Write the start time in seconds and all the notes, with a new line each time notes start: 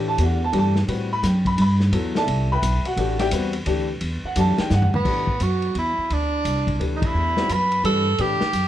Already playing: A2 E3 A3 D4 G4
0.08 A5
0.18 E2 E3 A3 D4 G4, hi-hat pedal, ride
0.23 F#5
0.44 A5
0.52 G2 E3 A3 D4 G4, ride
0.58 A5
0.76 snare
0.88 A2 G3 C4 F#4 B4, ride
1.13 B5
1.23 F#2, snare, hi-hat pedal, ride
1.27 G5
1.45 B5, kick, ride
1.57 G2, ride
1.62 B5
1.80 snare
1.92 E2 F#3 B3 E4 A4, ride
2.15 A4 D5 E5 A5, snare
2.27 C2, ride
2.52 B4 E5 G5 B5
2.62 B1, hi-hat pedal, ride
2.84 F#4 F#5, muted upright bass stroke, ride
2.96 A1 E3 A3 D4 G4, ride
3.19 G4 D5 E5 G5, snare, ride
3.31 E2 G3 C4 F#4 B4, hi-hat pedal, ride
3.53 ride
3.66 D2 E3 A3 D4 G4, ride
4.01 E2, ride
4.24 F#5, muted upright bass stroke
4.36 F#2 E3 A3 D4 G4 A5, hi-hat pedal, ride
4.58 G5, muted upright bass stroke, snare, ride
4.70 G2 F#5, snare, hi-hat pedal
4.82 floor tom
4.94 B3, floor tom
5.05 A2 E3 A3 D4 G4 B4, kick, crash
5.27 kick
5.40 F#2 F#4, hi-hat pedal, ride
5.62 ride
5.75 E2 E4, ride
5.98 muted upright bass stroke
6.10 D2 D4, ride
6.45 C2, hi-hat pedal, ride
6.67 kick, ride
6.79 D2 E3 A3 D4 G4 B4, ride
6.96 D#4
7.02 E4, kick, ride
7.14 E2
7.36 G3 C4 F#4 B4 D5, snare
7.49 F#2 B4, hi-hat pedal, ride
7.72 ride
7.83 G2 E3 A3 D4 G4 A4 B4, ride
8.18 A2 E3 A3 D4 G4 B4, ride
8.41 muted upright bass stroke, snare
8.53 F#2, hi-hat pedal, ride